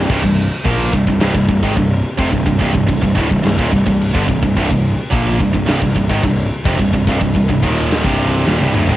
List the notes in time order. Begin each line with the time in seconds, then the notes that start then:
0.09 C1 C2 G2, kick, crash
0.23 C1 C2 G2, kick
0.65 A#1 A#2 F3 A#3, kick, crash
0.93 C1 C2 G2, kick
1.07 C1 C2 G2, kick
1.20 C1 C2 G2, snare, crash
1.34 C1 C2 G2, kick
1.49 C1 C2 G2, kick
1.62 G#1 G#2 D#3, kick
1.77 C1 C2 G2, kick, crash
2.18 F1 F2 C3, kick
2.32 C1 C2 G2, kick, crash
2.47 C1 C2 G2, kick
2.60 C1 C2 G2, kick
2.75 C1 C2 G2, kick
2.89 C1 C2 G2, kick, crash
3.03 C1 C2 G2, kick
3.16 D1 D2 A2, kick
3.31 C1 C2 G2, kick
3.45 C1 C2 G2, snare, crash
3.59 D#1 D#2 A#2, kick
3.73 C1 C2 G2, kick
3.87 C1 C2 G2, kick
4.01 crash
4.15 G1 G2 D3, kick
4.28 C1 C2 G2, kick
4.43 C1 C2 G2, kick
4.56 C1 C2 G2, kick, crash
4.71 C1 C2 G2, kick
5.12 A#1 A#2 F3 A#3, kick, crash
5.40 C1 C2 G2, kick
5.54 C1 C2 G2, kick
5.67 C1 C2 G2, snare, crash
5.81 C1 C2 G2, kick
5.95 C1 C2 G2, kick
6.09 G#1 G#2 D#3, kick
6.23 C1 C2 G2, kick, crash
6.64 F1 F2 C3, kick
6.79 C1 C2 G2, kick, crash
6.93 C1 C2 G2, kick
7.07 C1 C2 G2, kick
7.20 C1 C2 G2, kick
7.34 C1 C2 G2, kick, crash
7.48 C1 C2 G2, kick
7.62 D#1 D#2 A#2 D#3, kick
7.91 snare, crash
8.04 C1 C2 G2 C3, kick
8.45 D#1 D#2 A#2, snare
8.60 C1 C2 G2, high tom
8.74 D1 D2 A2, mid tom
8.87 G#1 G#2 D#3, floor tom